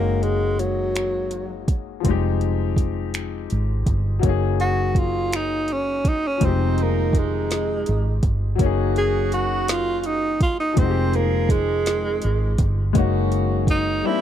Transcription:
0.00 2.01 F#1 medium
0.00 1.99 G#3 medium
0.00 0.25 A#3 medium
0.00 2.01 A#3 medium
0.00 2.02 C#4 medium
0.00 2.03 D#4 medium
0.00 2.04 F#4 medium
0.23 0.61 G#3 medium
0.23 closed hi-hat soft
0.59 1.68 F#3 medium
0.59 closed hi-hat soft
0.96 finger snap medium
0.96 closed hi-hat medium
1.31 closed hi-hat medium
1.68 kick medium
1.68 closed hi-hat soft
2.00 4.17 F3 medium
2.00 2.10 G3 medium
2.05 3.47 F1 loud
2.05 4.19 C4 medium
2.05 4.21 D#4 medium
2.05 kick loud
2.05 closed hi-hat medium
2.09 4.21 G#3 medium
2.09 4.22 G4 medium
2.41 closed hi-hat soft
2.76 kick medium
2.76 closed hi-hat soft
3.14 finger snap loud
3.14 closed hi-hat medium
3.50 3.84 G#1 medium
3.50 closed hi-hat soft
3.86 4.20 G1 medium
3.86 kick medium
3.86 closed hi-hat soft
4.19 6.35 F#3 medium
4.19 6.36 A#3 medium
4.19 kick loud
4.19 closed hi-hat medium
4.24 6.38 F#1 medium
4.24 6.38 C#4 medium
4.24 6.39 D#4 medium
4.29 6.40 G#4 medium
4.60 5.00 F#4 medium
4.60 closed hi-hat soft
4.95 5.37 F4 medium
4.95 kick medium
4.95 closed hi-hat soft
5.32 5.74 D#4 loud
5.32 finger snap loud
5.32 closed hi-hat medium
5.68 closed hi-hat medium
5.73 6.10 C#4 medium
6.05 6.29 D#4 medium
6.05 kick medium
6.05 closed hi-hat medium
6.27 6.47 C#4 medium
6.38 8.19 C3 medium
6.38 8.19 D#3 medium
6.38 8.53 F3 medium
6.38 8.55 G#3 medium
6.38 8.19 G#3 medium
6.38 8.19 D#4 medium
6.38 kick loud
6.38 closed hi-hat medium
6.42 7.83 F1 loud
6.42 8.56 C4 medium
6.42 6.84 C4 medium
6.42 8.57 D#4 medium
6.48 8.59 G4 medium
6.78 closed hi-hat soft
6.83 7.20 A#3 medium
7.13 kick medium
7.13 closed hi-hat soft
7.19 8.25 G#3 medium
7.51 snare loud
7.51 closed hi-hat medium
7.86 8.21 G#1 medium
7.86 closed hi-hat soft
8.23 8.56 G1 medium
8.23 kick medium
8.23 closed hi-hat soft
8.56 10.37 D#3 medium
8.56 10.72 F#3 medium
8.56 10.37 F#3 medium
8.56 10.73 A#3 medium
8.56 10.37 C#4 medium
8.56 10.37 F#4 medium
8.56 kick loud
8.56 closed hi-hat medium
8.60 10.74 F#1 medium
8.60 10.74 C#4 medium
8.60 10.75 D#4 medium
8.66 10.77 G#4 medium
8.96 9.31 G#4 loud
8.96 closed hi-hat soft
9.32 9.71 F#4 medium
9.32 closed hi-hat soft
9.68 10.00 F4 loud
9.68 snare loud
9.68 closed hi-hat medium
10.00 10.07 F4 medium
10.00 closed hi-hat medium
10.06 10.42 D#4 loud
10.41 10.59 F4 medium
10.41 kick medium
10.41 closed hi-hat soft
10.60 10.80 D#4 medium
10.73 12.56 D#3 medium
10.73 12.90 F3 medium
10.73 12.91 G#3 medium
10.73 12.55 G#3 medium
10.73 12.55 C4 medium
10.73 12.55 G#4 medium
10.73 kick loud
10.73 closed hi-hat medium
10.78 12.19 F1 loud
10.78 12.92 C4 medium
10.78 11.17 C4 medium
10.78 12.93 D#4 medium
10.84 10.87 F#4 medium
10.90 12.98 G4 medium
11.14 11.53 A#3 medium
11.14 closed hi-hat soft
11.49 12.60 G#3 medium
11.49 kick medium
11.49 closed hi-hat medium
11.86 snare loud
11.86 closed hi-hat medium
12.22 12.57 G#1 medium
12.22 closed hi-hat medium
12.58 12.92 G1 medium
12.58 kick medium
12.58 closed hi-hat medium
12.93 14.01 F#1 loud
12.93 13.66 D#3 medium
12.93 13.67 F#3 medium
12.93 14.03 G#3 medium
12.93 14.03 A#3 medium
12.93 13.67 C#4 medium
12.93 14.05 C#4 medium
12.93 13.67 F#4 medium
12.93 kick loud
12.93 closed hi-hat medium
12.97 14.06 D#4 medium
12.97 14.06 F#4 medium
13.32 closed hi-hat soft
13.67 14.08 D#4 loud
13.67 kick medium
13.67 closed hi-hat soft
14.03 14.21 E3 medium
14.03 14.21 G3 medium
14.03 14.21 A#3 medium
14.03 14.21 C4 medium
14.03 14.21 D4 medium
14.03 14.21 E4 loud
14.03 14.21 G4 medium
14.09 14.13 D#4 medium
14.15 14.21 E4 medium

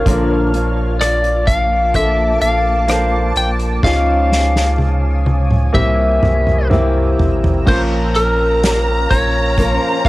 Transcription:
0.00 5.70 F4 medium
0.00 0.96 A#4 medium
0.05 2.37 A#1 loud
0.05 1.43 A#2 medium
0.05 0.53 A#2 medium
0.05 0.53 D3 medium
0.05 1.43 F3 medium
0.05 0.53 F3 medium
0.05 1.84 A#3 medium
0.05 3.80 A#3 medium
0.05 0.53 A#3 medium
0.05 1.85 D4 medium
0.05 0.52 D4 medium
0.05 1.85 A#4 medium
0.05 3.80 A5 medium
0.05 3.80 D6 medium
0.05 kick medium
0.05 closed hi-hat medium
0.54 1.93 F3 soft
0.54 1.94 A#3 soft
0.54 1.94 D4 soft
0.54 closed hi-hat medium
1.01 1.49 D5 medium
1.01 cross-stick medium
1.01 closed hi-hat medium
1.24 closed hi-hat soft
1.47 1.96 F5 medium
1.47 kick medium
1.47 closed hi-hat medium
1.94 2.88 F3 medium
1.94 2.88 A#3 medium
1.94 2.89 D4 medium
1.94 2.89 A4 medium
1.94 2.39 E5 medium
1.94 kick medium
1.94 closed hi-hat medium
2.41 3.32 A#1 loud
2.41 3.32 F5 medium
2.41 closed hi-hat medium
2.88 3.83 F3 medium
2.88 3.78 A#3 medium
2.88 3.84 A#3 medium
2.88 3.79 D4 medium
2.88 3.84 D4 medium
2.88 3.84 A4 medium
2.88 3.79 C5 medium
2.88 cross-stick medium
2.88 closed hi-hat medium
3.36 3.80 A#1 medium
3.36 3.50 G5 medium
3.36 closed hi-hat medium
3.59 closed hi-hat soft
3.83 5.70 C#2 medium
3.83 5.74 C#3 medium
3.83 5.22 C#3 medium
3.83 5.74 F3 medium
3.83 5.22 G#3 medium
3.83 5.64 C#4 medium
3.83 5.75 C#4 medium
3.83 5.65 D#4 medium
3.83 5.75 D#4 medium
3.83 5.65 F4 medium
3.83 5.76 G#4 medium
3.83 5.73 C#5 medium
3.83 5.74 F5 loud
3.83 5.73 G#5 medium
3.83 5.73 D#6 loud
3.83 kick medium
3.83 snare medium
4.32 snare medium
4.56 snare medium
4.78 high tom medium
5.26 high tom medium
5.51 mid tom medium
5.73 6.19 C2 loud
5.73 7.15 C3 medium
5.73 7.15 G3 medium
5.73 6.70 G3 medium
5.73 6.65 A#3 medium
5.73 6.71 A#3 medium
5.73 6.66 C4 medium
5.73 6.66 E4 medium
5.73 6.71 E4 medium
5.73 7.65 C5 medium
5.73 6.67 E5 medium
5.73 7.66 G5 medium
5.73 7.65 A#5 medium
5.73 7.65 E6 medium
5.73 kick medium
5.73 mid tom medium
5.77 6.72 G4 medium
6.22 7.15 C2 loud
6.22 mid tom medium
6.47 mid tom medium
6.70 7.68 G3 medium
6.70 7.62 A#3 medium
6.70 7.68 A#3 medium
6.70 7.62 C4 medium
6.70 7.63 E4 medium
6.70 7.68 E4 medium
6.70 7.69 G4 medium
6.70 mid tom medium
7.19 7.64 A1 medium
7.19 floor tom medium
7.44 floor tom medium
7.65 9.06 A#1 medium
7.65 9.06 A#2 medium
7.65 8.63 A#2 medium
7.65 9.06 F3 medium
7.65 8.63 F3 medium
7.65 9.48 A#3 medium
7.65 8.62 A#3 medium
7.65 9.48 C#4 medium
7.65 10.09 C#4 medium
7.65 8.63 C#4 medium
7.65 9.48 F4 medium
7.65 8.63 F4 medium
7.65 10.09 A#4 medium
7.65 8.64 A#4 medium
7.65 7.81 C5 medium
7.65 10.09 F5 medium
7.65 10.09 A#5 loud
7.65 9.57 A#5 loud
7.65 kick loud
7.65 crash medium
8.15 9.14 A#4 medium
8.15 closed hi-hat medium
8.63 9.11 A#3 medium
8.63 9.11 C#4 soft
8.63 9.10 F4 medium
8.63 9.09 A#4 medium
8.63 snare loud
8.63 closed hi-hat medium
9.10 9.78 A#1 medium
9.10 9.58 A#3 soft
9.10 9.58 C#4 soft
9.10 9.59 F4 soft
9.10 9.58 A#4 soft
9.10 9.76 C#5 medium
9.10 kick medium
9.10 closed hi-hat medium
9.57 10.09 F3 medium
9.57 10.09 A#3 medium
9.57 10.09 C#4 medium
9.57 10.09 F4 medium
9.57 10.09 A#4 medium
9.57 10.09 C6 medium
9.57 kick medium
9.57 closed hi-hat medium
9.76 10.05 C5 medium
10.04 10.09 A1 loud
10.04 10.09 A#3 medium
10.04 10.09 C#4 medium
10.04 kick medium
10.04 closed hi-hat medium

